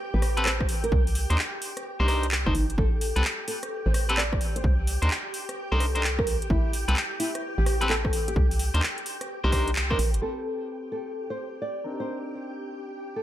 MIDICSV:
0, 0, Header, 1, 6, 480
1, 0, Start_track
1, 0, Key_signature, 0, "minor"
1, 0, Tempo, 465116
1, 948, Time_signature, 4, 2, 24, 8
1, 13651, End_track
2, 0, Start_track
2, 0, Title_t, "String machine"
2, 0, Program_c, 0, 50
2, 0, Note_on_c, 0, 67, 83
2, 0, Note_on_c, 0, 79, 82
2, 2857, Note_off_c, 0, 67, 0
2, 2858, Note_off_c, 0, 79, 0
2, 2869, Note_on_c, 0, 67, 83
2, 2870, Note_on_c, 0, 79, 85
2, 10537, Note_off_c, 0, 79, 0
2, 10538, Note_off_c, 0, 67, 0
2, 10550, Note_on_c, 0, 67, 79
2, 10550, Note_on_c, 0, 79, 81
2, 13651, Note_off_c, 0, 67, 0
2, 13651, Note_off_c, 0, 79, 0
2, 13651, End_track
3, 0, Start_track
3, 0, Title_t, "Nylon-string guitar"
3, 0, Program_c, 1, 24
3, 143, Note_on_c, 1, 71, 90
3, 323, Note_off_c, 1, 71, 0
3, 468, Note_on_c, 1, 72, 94
3, 675, Note_off_c, 1, 72, 0
3, 863, Note_on_c, 1, 70, 94
3, 1043, Note_off_c, 1, 70, 0
3, 2064, Note_on_c, 1, 67, 88
3, 2317, Note_off_c, 1, 67, 0
3, 2544, Note_on_c, 1, 63, 91
3, 2723, Note_off_c, 1, 63, 0
3, 2867, Note_on_c, 1, 69, 98
3, 3075, Note_off_c, 1, 69, 0
3, 3589, Note_on_c, 1, 69, 91
3, 3796, Note_off_c, 1, 69, 0
3, 3985, Note_on_c, 1, 72, 90
3, 4163, Note_off_c, 1, 72, 0
3, 4308, Note_on_c, 1, 74, 91
3, 4515, Note_off_c, 1, 74, 0
3, 4705, Note_on_c, 1, 72, 94
3, 4883, Note_off_c, 1, 72, 0
3, 5905, Note_on_c, 1, 69, 92
3, 6157, Note_off_c, 1, 69, 0
3, 6384, Note_on_c, 1, 70, 95
3, 6563, Note_off_c, 1, 70, 0
3, 6708, Note_on_c, 1, 64, 101
3, 6915, Note_off_c, 1, 64, 0
3, 7428, Note_on_c, 1, 64, 93
3, 7635, Note_off_c, 1, 64, 0
3, 7824, Note_on_c, 1, 67, 89
3, 8003, Note_off_c, 1, 67, 0
3, 8148, Note_on_c, 1, 69, 95
3, 8355, Note_off_c, 1, 69, 0
3, 8544, Note_on_c, 1, 67, 91
3, 8723, Note_off_c, 1, 67, 0
3, 9745, Note_on_c, 1, 67, 90
3, 9997, Note_off_c, 1, 67, 0
3, 10225, Note_on_c, 1, 70, 98
3, 10403, Note_off_c, 1, 70, 0
3, 10548, Note_on_c, 1, 69, 86
3, 10755, Note_off_c, 1, 69, 0
3, 11268, Note_on_c, 1, 69, 82
3, 11475, Note_off_c, 1, 69, 0
3, 11664, Note_on_c, 1, 72, 81
3, 11843, Note_off_c, 1, 72, 0
3, 11989, Note_on_c, 1, 74, 83
3, 12196, Note_off_c, 1, 74, 0
3, 12384, Note_on_c, 1, 72, 86
3, 12563, Note_off_c, 1, 72, 0
3, 13584, Note_on_c, 1, 69, 85
3, 13651, Note_off_c, 1, 69, 0
3, 13651, End_track
4, 0, Start_track
4, 0, Title_t, "Clean electric guitar"
4, 0, Program_c, 2, 27
4, 382, Note_on_c, 2, 71, 105
4, 385, Note_on_c, 2, 69, 91
4, 390, Note_on_c, 2, 67, 77
4, 393, Note_on_c, 2, 60, 81
4, 514, Note_off_c, 2, 69, 0
4, 515, Note_off_c, 2, 60, 0
4, 515, Note_off_c, 2, 67, 0
4, 515, Note_off_c, 2, 71, 0
4, 1342, Note_on_c, 2, 72, 98
4, 1346, Note_on_c, 2, 70, 65
4, 1350, Note_on_c, 2, 63, 77
4, 1355, Note_on_c, 2, 62, 72
4, 1413, Note_off_c, 2, 62, 0
4, 1413, Note_off_c, 2, 63, 0
4, 1413, Note_off_c, 2, 70, 0
4, 1413, Note_off_c, 2, 72, 0
4, 2062, Note_on_c, 2, 72, 102
4, 2066, Note_on_c, 2, 70, 85
4, 2069, Note_on_c, 2, 63, 82
4, 2073, Note_on_c, 2, 62, 88
4, 2132, Note_off_c, 2, 62, 0
4, 2132, Note_off_c, 2, 63, 0
4, 2132, Note_off_c, 2, 72, 0
4, 2133, Note_off_c, 2, 70, 0
4, 2145, Note_on_c, 2, 72, 103
4, 2150, Note_on_c, 2, 70, 84
4, 2154, Note_on_c, 2, 63, 83
4, 2159, Note_on_c, 2, 62, 84
4, 2330, Note_off_c, 2, 62, 0
4, 2330, Note_off_c, 2, 63, 0
4, 2330, Note_off_c, 2, 70, 0
4, 2330, Note_off_c, 2, 72, 0
4, 2542, Note_on_c, 2, 72, 92
4, 2545, Note_on_c, 2, 70, 67
4, 2549, Note_on_c, 2, 63, 64
4, 2555, Note_on_c, 2, 62, 68
4, 2613, Note_off_c, 2, 62, 0
4, 2613, Note_off_c, 2, 63, 0
4, 2613, Note_off_c, 2, 70, 0
4, 2613, Note_off_c, 2, 72, 0
4, 3261, Note_on_c, 2, 71, 112
4, 3265, Note_on_c, 2, 69, 85
4, 3270, Note_on_c, 2, 67, 80
4, 3274, Note_on_c, 2, 60, 85
4, 3333, Note_off_c, 2, 60, 0
4, 3333, Note_off_c, 2, 67, 0
4, 3333, Note_off_c, 2, 69, 0
4, 3333, Note_off_c, 2, 71, 0
4, 4222, Note_on_c, 2, 71, 105
4, 4226, Note_on_c, 2, 69, 87
4, 4230, Note_on_c, 2, 67, 78
4, 4234, Note_on_c, 2, 60, 88
4, 4354, Note_off_c, 2, 60, 0
4, 4354, Note_off_c, 2, 67, 0
4, 4354, Note_off_c, 2, 69, 0
4, 4354, Note_off_c, 2, 71, 0
4, 5180, Note_on_c, 2, 72, 99
4, 5185, Note_on_c, 2, 70, 74
4, 5190, Note_on_c, 2, 63, 76
4, 5196, Note_on_c, 2, 62, 71
4, 5252, Note_off_c, 2, 62, 0
4, 5253, Note_off_c, 2, 63, 0
4, 5253, Note_off_c, 2, 70, 0
4, 5253, Note_off_c, 2, 72, 0
4, 5901, Note_on_c, 2, 72, 110
4, 5905, Note_on_c, 2, 70, 87
4, 5910, Note_on_c, 2, 63, 79
4, 5916, Note_on_c, 2, 62, 83
4, 6034, Note_off_c, 2, 62, 0
4, 6034, Note_off_c, 2, 63, 0
4, 6034, Note_off_c, 2, 70, 0
4, 6034, Note_off_c, 2, 72, 0
4, 6141, Note_on_c, 2, 72, 85
4, 6145, Note_on_c, 2, 70, 68
4, 6150, Note_on_c, 2, 63, 70
4, 6155, Note_on_c, 2, 62, 72
4, 6213, Note_off_c, 2, 62, 0
4, 6213, Note_off_c, 2, 63, 0
4, 6213, Note_off_c, 2, 70, 0
4, 6213, Note_off_c, 2, 72, 0
4, 7102, Note_on_c, 2, 71, 110
4, 7105, Note_on_c, 2, 69, 86
4, 7108, Note_on_c, 2, 67, 79
4, 7114, Note_on_c, 2, 60, 86
4, 7172, Note_off_c, 2, 69, 0
4, 7172, Note_off_c, 2, 71, 0
4, 7173, Note_off_c, 2, 60, 0
4, 7173, Note_off_c, 2, 67, 0
4, 8060, Note_on_c, 2, 71, 113
4, 8065, Note_on_c, 2, 69, 82
4, 8070, Note_on_c, 2, 67, 85
4, 8075, Note_on_c, 2, 60, 98
4, 8194, Note_off_c, 2, 60, 0
4, 8194, Note_off_c, 2, 69, 0
4, 8194, Note_off_c, 2, 71, 0
4, 8195, Note_off_c, 2, 67, 0
4, 9022, Note_on_c, 2, 72, 102
4, 9026, Note_on_c, 2, 70, 81
4, 9030, Note_on_c, 2, 63, 76
4, 9033, Note_on_c, 2, 62, 77
4, 9093, Note_off_c, 2, 62, 0
4, 9093, Note_off_c, 2, 63, 0
4, 9093, Note_off_c, 2, 70, 0
4, 9093, Note_off_c, 2, 72, 0
4, 9742, Note_on_c, 2, 72, 115
4, 9746, Note_on_c, 2, 70, 88
4, 9750, Note_on_c, 2, 63, 83
4, 9756, Note_on_c, 2, 62, 84
4, 9812, Note_off_c, 2, 62, 0
4, 9812, Note_off_c, 2, 63, 0
4, 9812, Note_off_c, 2, 70, 0
4, 9812, Note_off_c, 2, 72, 0
4, 9826, Note_on_c, 2, 72, 104
4, 9830, Note_on_c, 2, 70, 83
4, 9833, Note_on_c, 2, 63, 76
4, 9837, Note_on_c, 2, 62, 82
4, 10010, Note_off_c, 2, 62, 0
4, 10010, Note_off_c, 2, 63, 0
4, 10010, Note_off_c, 2, 70, 0
4, 10010, Note_off_c, 2, 72, 0
4, 10221, Note_on_c, 2, 72, 96
4, 10227, Note_on_c, 2, 70, 66
4, 10232, Note_on_c, 2, 63, 67
4, 10238, Note_on_c, 2, 62, 74
4, 10293, Note_off_c, 2, 62, 0
4, 10293, Note_off_c, 2, 63, 0
4, 10293, Note_off_c, 2, 70, 0
4, 10293, Note_off_c, 2, 72, 0
4, 10544, Note_on_c, 2, 60, 63
4, 10550, Note_on_c, 2, 67, 62
4, 10556, Note_on_c, 2, 69, 57
4, 10563, Note_on_c, 2, 71, 69
4, 12209, Note_off_c, 2, 60, 0
4, 12209, Note_off_c, 2, 67, 0
4, 12209, Note_off_c, 2, 69, 0
4, 12209, Note_off_c, 2, 71, 0
4, 12223, Note_on_c, 2, 70, 75
4, 12230, Note_on_c, 2, 63, 59
4, 12235, Note_on_c, 2, 62, 60
4, 12242, Note_on_c, 2, 60, 62
4, 13651, Note_off_c, 2, 60, 0
4, 13651, Note_off_c, 2, 62, 0
4, 13651, Note_off_c, 2, 63, 0
4, 13651, Note_off_c, 2, 70, 0
4, 13651, End_track
5, 0, Start_track
5, 0, Title_t, "FM bass"
5, 0, Program_c, 3, 39
5, 146, Note_on_c, 3, 33, 95
5, 687, Note_off_c, 3, 33, 0
5, 949, Note_on_c, 3, 36, 98
5, 1305, Note_off_c, 3, 36, 0
5, 1345, Note_on_c, 3, 39, 77
5, 1415, Note_off_c, 3, 39, 0
5, 2065, Note_on_c, 3, 36, 93
5, 2539, Note_off_c, 3, 36, 0
5, 2545, Note_on_c, 3, 31, 89
5, 2615, Note_off_c, 3, 31, 0
5, 2629, Note_on_c, 3, 31, 88
5, 2842, Note_off_c, 3, 31, 0
5, 2868, Note_on_c, 3, 33, 100
5, 3224, Note_off_c, 3, 33, 0
5, 3265, Note_on_c, 3, 36, 82
5, 3335, Note_off_c, 3, 36, 0
5, 3985, Note_on_c, 3, 33, 90
5, 4527, Note_off_c, 3, 33, 0
5, 4789, Note_on_c, 3, 36, 101
5, 5145, Note_off_c, 3, 36, 0
5, 5185, Note_on_c, 3, 39, 78
5, 5255, Note_off_c, 3, 39, 0
5, 5905, Note_on_c, 3, 36, 92
5, 6585, Note_off_c, 3, 36, 0
5, 6709, Note_on_c, 3, 33, 99
5, 7065, Note_off_c, 3, 33, 0
5, 7105, Note_on_c, 3, 36, 81
5, 7175, Note_off_c, 3, 36, 0
5, 7824, Note_on_c, 3, 33, 91
5, 8367, Note_off_c, 3, 33, 0
5, 8629, Note_on_c, 3, 36, 100
5, 8985, Note_off_c, 3, 36, 0
5, 9024, Note_on_c, 3, 39, 81
5, 9095, Note_off_c, 3, 39, 0
5, 9745, Note_on_c, 3, 36, 93
5, 10303, Note_off_c, 3, 36, 0
5, 10309, Note_on_c, 3, 34, 82
5, 10466, Note_on_c, 3, 31, 99
5, 10481, Note_off_c, 3, 34, 0
5, 10535, Note_off_c, 3, 31, 0
5, 13651, End_track
6, 0, Start_track
6, 0, Title_t, "Drums"
6, 229, Note_on_c, 9, 37, 65
6, 229, Note_on_c, 9, 46, 96
6, 333, Note_off_c, 9, 37, 0
6, 333, Note_off_c, 9, 46, 0
6, 385, Note_on_c, 9, 42, 61
6, 469, Note_on_c, 9, 39, 127
6, 488, Note_off_c, 9, 42, 0
6, 572, Note_off_c, 9, 39, 0
6, 625, Note_on_c, 9, 36, 112
6, 625, Note_on_c, 9, 37, 69
6, 709, Note_on_c, 9, 46, 100
6, 728, Note_off_c, 9, 36, 0
6, 729, Note_off_c, 9, 37, 0
6, 812, Note_off_c, 9, 46, 0
6, 866, Note_on_c, 9, 42, 63
6, 949, Note_on_c, 9, 36, 122
6, 969, Note_off_c, 9, 42, 0
6, 1052, Note_off_c, 9, 36, 0
6, 1105, Note_on_c, 9, 46, 58
6, 1189, Note_off_c, 9, 46, 0
6, 1189, Note_on_c, 9, 46, 102
6, 1292, Note_off_c, 9, 46, 0
6, 1345, Note_on_c, 9, 42, 64
6, 1428, Note_on_c, 9, 39, 120
6, 1448, Note_off_c, 9, 42, 0
6, 1532, Note_off_c, 9, 39, 0
6, 1669, Note_on_c, 9, 46, 100
6, 1772, Note_off_c, 9, 46, 0
6, 1826, Note_on_c, 9, 37, 49
6, 1826, Note_on_c, 9, 42, 64
6, 1929, Note_off_c, 9, 37, 0
6, 1929, Note_off_c, 9, 42, 0
6, 2149, Note_on_c, 9, 37, 65
6, 2149, Note_on_c, 9, 46, 92
6, 2252, Note_off_c, 9, 37, 0
6, 2252, Note_off_c, 9, 46, 0
6, 2305, Note_on_c, 9, 42, 61
6, 2389, Note_on_c, 9, 39, 122
6, 2408, Note_off_c, 9, 42, 0
6, 2492, Note_off_c, 9, 39, 0
6, 2545, Note_on_c, 9, 36, 109
6, 2545, Note_on_c, 9, 37, 67
6, 2628, Note_on_c, 9, 46, 99
6, 2648, Note_off_c, 9, 36, 0
6, 2649, Note_off_c, 9, 37, 0
6, 2731, Note_off_c, 9, 46, 0
6, 2785, Note_on_c, 9, 42, 62
6, 2868, Note_on_c, 9, 36, 117
6, 2888, Note_off_c, 9, 42, 0
6, 2972, Note_off_c, 9, 36, 0
6, 3109, Note_on_c, 9, 46, 104
6, 3212, Note_off_c, 9, 46, 0
6, 3265, Note_on_c, 9, 42, 68
6, 3349, Note_on_c, 9, 39, 116
6, 3368, Note_off_c, 9, 42, 0
6, 3452, Note_off_c, 9, 39, 0
6, 3589, Note_on_c, 9, 46, 102
6, 3692, Note_off_c, 9, 46, 0
6, 3745, Note_on_c, 9, 37, 49
6, 3745, Note_on_c, 9, 42, 66
6, 3849, Note_off_c, 9, 37, 0
6, 3849, Note_off_c, 9, 42, 0
6, 4069, Note_on_c, 9, 37, 62
6, 4069, Note_on_c, 9, 46, 97
6, 4172, Note_off_c, 9, 37, 0
6, 4172, Note_off_c, 9, 46, 0
6, 4225, Note_on_c, 9, 42, 65
6, 4309, Note_on_c, 9, 39, 122
6, 4328, Note_off_c, 9, 42, 0
6, 4412, Note_off_c, 9, 39, 0
6, 4465, Note_on_c, 9, 36, 108
6, 4465, Note_on_c, 9, 37, 64
6, 4549, Note_on_c, 9, 46, 102
6, 4568, Note_off_c, 9, 36, 0
6, 4569, Note_off_c, 9, 37, 0
6, 4652, Note_off_c, 9, 46, 0
6, 4706, Note_on_c, 9, 42, 67
6, 4789, Note_on_c, 9, 36, 115
6, 4809, Note_off_c, 9, 42, 0
6, 4892, Note_off_c, 9, 36, 0
6, 5029, Note_on_c, 9, 46, 105
6, 5133, Note_off_c, 9, 46, 0
6, 5186, Note_on_c, 9, 42, 67
6, 5269, Note_on_c, 9, 39, 112
6, 5289, Note_off_c, 9, 42, 0
6, 5372, Note_off_c, 9, 39, 0
6, 5509, Note_on_c, 9, 46, 103
6, 5613, Note_off_c, 9, 46, 0
6, 5666, Note_on_c, 9, 37, 48
6, 5666, Note_on_c, 9, 42, 65
6, 5769, Note_off_c, 9, 37, 0
6, 5769, Note_off_c, 9, 42, 0
6, 5989, Note_on_c, 9, 37, 62
6, 5989, Note_on_c, 9, 46, 100
6, 6093, Note_off_c, 9, 37, 0
6, 6093, Note_off_c, 9, 46, 0
6, 6145, Note_on_c, 9, 42, 66
6, 6229, Note_on_c, 9, 39, 118
6, 6249, Note_off_c, 9, 42, 0
6, 6332, Note_off_c, 9, 39, 0
6, 6385, Note_on_c, 9, 36, 103
6, 6386, Note_on_c, 9, 37, 64
6, 6469, Note_on_c, 9, 46, 105
6, 6488, Note_off_c, 9, 36, 0
6, 6489, Note_off_c, 9, 37, 0
6, 6573, Note_off_c, 9, 46, 0
6, 6626, Note_on_c, 9, 42, 70
6, 6709, Note_on_c, 9, 36, 111
6, 6729, Note_off_c, 9, 42, 0
6, 6812, Note_off_c, 9, 36, 0
6, 6949, Note_on_c, 9, 46, 109
6, 7053, Note_off_c, 9, 46, 0
6, 7106, Note_on_c, 9, 42, 68
6, 7189, Note_on_c, 9, 39, 113
6, 7209, Note_off_c, 9, 42, 0
6, 7292, Note_off_c, 9, 39, 0
6, 7429, Note_on_c, 9, 46, 105
6, 7532, Note_off_c, 9, 46, 0
6, 7586, Note_on_c, 9, 37, 50
6, 7586, Note_on_c, 9, 42, 68
6, 7689, Note_off_c, 9, 37, 0
6, 7689, Note_off_c, 9, 42, 0
6, 7909, Note_on_c, 9, 37, 62
6, 7909, Note_on_c, 9, 46, 107
6, 8012, Note_off_c, 9, 37, 0
6, 8012, Note_off_c, 9, 46, 0
6, 8065, Note_on_c, 9, 42, 65
6, 8149, Note_on_c, 9, 39, 114
6, 8168, Note_off_c, 9, 42, 0
6, 8252, Note_off_c, 9, 39, 0
6, 8305, Note_on_c, 9, 36, 101
6, 8305, Note_on_c, 9, 37, 65
6, 8389, Note_on_c, 9, 46, 111
6, 8408, Note_off_c, 9, 36, 0
6, 8409, Note_off_c, 9, 37, 0
6, 8492, Note_off_c, 9, 46, 0
6, 8545, Note_on_c, 9, 42, 72
6, 8629, Note_on_c, 9, 36, 115
6, 8649, Note_off_c, 9, 42, 0
6, 8732, Note_off_c, 9, 36, 0
6, 8786, Note_on_c, 9, 46, 65
6, 8869, Note_off_c, 9, 46, 0
6, 8869, Note_on_c, 9, 46, 114
6, 8973, Note_off_c, 9, 46, 0
6, 9025, Note_on_c, 9, 42, 70
6, 9109, Note_on_c, 9, 39, 110
6, 9129, Note_off_c, 9, 42, 0
6, 9212, Note_off_c, 9, 39, 0
6, 9266, Note_on_c, 9, 42, 38
6, 9349, Note_on_c, 9, 46, 110
6, 9369, Note_off_c, 9, 42, 0
6, 9453, Note_off_c, 9, 46, 0
6, 9505, Note_on_c, 9, 37, 52
6, 9505, Note_on_c, 9, 42, 67
6, 9609, Note_off_c, 9, 37, 0
6, 9609, Note_off_c, 9, 42, 0
6, 9829, Note_on_c, 9, 36, 60
6, 9829, Note_on_c, 9, 37, 65
6, 9829, Note_on_c, 9, 46, 108
6, 9932, Note_off_c, 9, 36, 0
6, 9932, Note_off_c, 9, 37, 0
6, 9932, Note_off_c, 9, 46, 0
6, 9986, Note_on_c, 9, 42, 67
6, 10069, Note_on_c, 9, 39, 117
6, 10089, Note_off_c, 9, 42, 0
6, 10172, Note_off_c, 9, 39, 0
6, 10225, Note_on_c, 9, 36, 102
6, 10226, Note_on_c, 9, 37, 70
6, 10309, Note_on_c, 9, 46, 108
6, 10328, Note_off_c, 9, 36, 0
6, 10329, Note_off_c, 9, 37, 0
6, 10412, Note_off_c, 9, 46, 0
6, 10466, Note_on_c, 9, 42, 69
6, 10569, Note_off_c, 9, 42, 0
6, 13651, End_track
0, 0, End_of_file